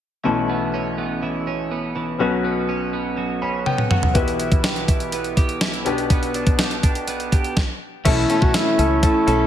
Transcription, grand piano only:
0.24 2.16 B1 medium
0.24 2.16 B2 medium
0.24 2.15 A3 medium
0.24 2.16 C#4 medium
0.24 2.16 E4 medium
0.24 2.17 A4 medium
2.18 4.11 B1 medium
2.18 4.11 B2 medium
2.18 4.10 B3 medium
2.18 4.11 C#4 medium
2.18 4.11 F#4 medium
2.18 4.12 B4 medium
3.42 3.65 B5 medium
3.66 3.89 G5 medium
3.91 4.13 F#5 medium
4.14 5.82 B1 medium
4.14 5.82 B2 medium
4.14 5.82 B3 medium
4.14 5.82 E4 medium
4.14 5.82 G4 medium
4.14 5.83 B4 medium
5.84 7.52 B1 medium
5.84 7.52 B2 medium
5.84 7.52 B3 medium
5.84 7.53 D4 medium
5.84 7.53 G4 medium
5.84 7.54 B4 medium
8.05 8.75 B2 medium
8.05 8.24 A3 medium
8.05 8.24 C#4 medium
8.05 8.25 E4 medium
8.05 8.25 A4 medium
8.29 8.49 A3 medium
8.29 8.49 C#4 medium
8.29 8.49 E4 medium
8.29 8.49 A4 medium
8.54 8.73 A3 medium
8.54 8.73 C#4 medium
8.54 8.73 E4 medium
8.54 8.74 A4 medium
8.78 8.98 A3 medium
8.78 8.98 C#4 medium
8.78 8.98 E4 medium
8.78 8.98 A4 medium
9.02 9.22 A3 medium
9.02 9.22 C#4 medium
9.02 9.22 E4 medium
9.02 9.22 A4 medium
9.27 9.46 A3 medium
9.27 9.46 C#4 medium
9.27 9.47 E4 medium
9.27 9.47 A4 medium

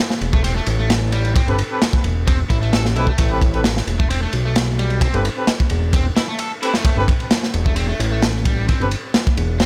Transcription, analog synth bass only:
0.21 0.61 E1 medium
0.67 1.42 A1 loud
1.48 1.63 G1 medium
2.04 2.45 E1 medium
2.50 2.95 A1 loud
2.96 3.12 B1 loud
3.19 3.82 A1 loud
3.87 4.28 E1 medium
4.33 5.08 B1 medium
5.14 5.29 G1 loud
5.71 6.11 E1 medium
6.85 6.95 G1 soft
6.97 7.12 G1 loud
7.54 7.94 E1 medium
8.00 8.74 A1 medium
8.80 8.96 G1 medium
9.37 9.66 E1 medium

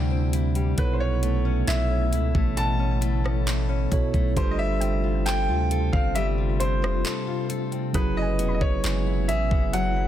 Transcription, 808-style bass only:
0.00 0.74 D2 loud
0.78 1.64 B1 loud
1.68 2.14 B1 loud
2.12 2.33 C#2 loud
2.35 3.87 A1 loud
3.92 4.13 B2 loud
4.14 4.35 B1 loud
4.37 5.50 G1 loud
5.48 5.91 D2 loud
5.93 6.84 G1 loud
6.83 7.04 F1 loud
7.95 8.41 F#1 loud
8.39 8.60 E1 medium
8.61 8.83 F#1 loud
8.84 9.30 F#1 loud
9.29 9.50 A1 loud
9.51 10.08 F#1 loud

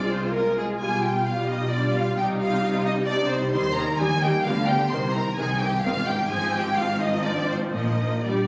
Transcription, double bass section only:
0.00 0.77 C2 medium
0.82 2.16 B1 medium
2.19 3.52 C2 medium
3.54 3.95 D#2 medium
4.00 4.41 D#2 medium
4.46 4.87 D2 loud
4.92 5.33 C2 loud
5.39 5.79 C2 loud
5.85 6.26 G#1 loud
6.32 7.71 G#1 loud
7.75 8.47 A#1 medium

